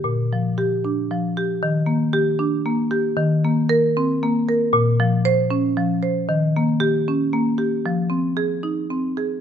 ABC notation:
X:1
M:6/8
L:1/8
Q:3/8=77
K:Cdor
V:1 name="Marimba"
z2 G2 z2 | z2 G2 z2 | z2 B2 z2 | [K:Bbm] z2 c2 z2 |
z2 =G2 z2 | z2 A2 z2 |]
V:2 name="Marimba"
B,, F,2 D F, G | E, B,2 D B, G | E, B,2 C B, B | [K:Bbm] B,, F,2 D F, c |
E, B,2 D B, =G | F, C2 E C A |]